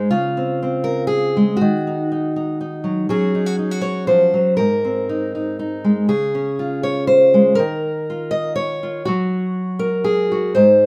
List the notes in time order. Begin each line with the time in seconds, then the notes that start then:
Already playing: G#2 D#4
0.11 C#3 F4
0.37 C4
0.62 C4
0.84 A#4
1.07 G#4
1.37 G#3
1.57 F#4
1.61 D#3
1.87 D#4
2.12 D#4
2.36 D#4
2.61 D#4
2.84 F#3
3.09 F#3 C#4 F#4 G#4
3.35 D#4
3.46 F#4
3.59 D#4
3.71 F#4
3.81 C#5
4.07 F3 C5
4.34 F#3
4.57 G#2 A#4
4.85 C4
5.09 D#4
5.35 D#4
5.59 D#4
5.84 G#3
6.09 C#3 G#4
6.35 C#4
6.59 F4
6.83 C#5
7.07 C5
7.34 G#3
7.55 D#3 A#4
8.10 F4
8.31 D#5
8.56 C#5
8.83 F4
9.05 F#3 F#4
9.79 A#4
10.04 G#4
10.32 F#4
10.55 G#2 C5